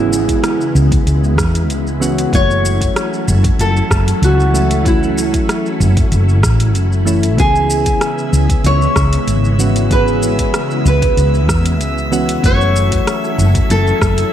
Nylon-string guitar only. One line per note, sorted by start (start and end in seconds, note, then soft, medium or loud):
0.00 0.72 E4 medium
2.35 3.25 C#5 loud
3.61 4.25 A4 loud
4.24 4.87 F#4 medium
4.88 5.77 E4 medium
7.39 8.66 G#4 loud
8.66 9.92 C#5 loud
9.92 10.86 B4 medium
10.87 11.77 B4 medium
12.46 13.35 C#5 loud
13.71 14.33 A4 loud